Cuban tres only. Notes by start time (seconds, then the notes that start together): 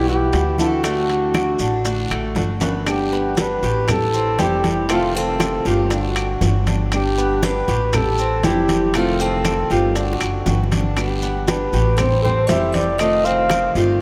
0.09 B3
0.59 A4
0.84 A3
1.35 F#4
1.60 D4
2.11 A3
2.62 B3
3.13 B3
3.37 D4
3.64 G4
4.14 C4
4.39 G3
4.90 A3
5.15 C4
5.66 G4
5.91 D4
6.67 D4
7.18 B3
7.43 D4
7.68 G4
8.19 C4
8.45 G3
8.95 A3
9.20 C4
9.71 G4
9.96 D4
10.72 D4
11.23 B3
11.49 D4
11.74 G4
12.25 C4
12.50 G3
13.00 A3
13.26 C4
13.77 G4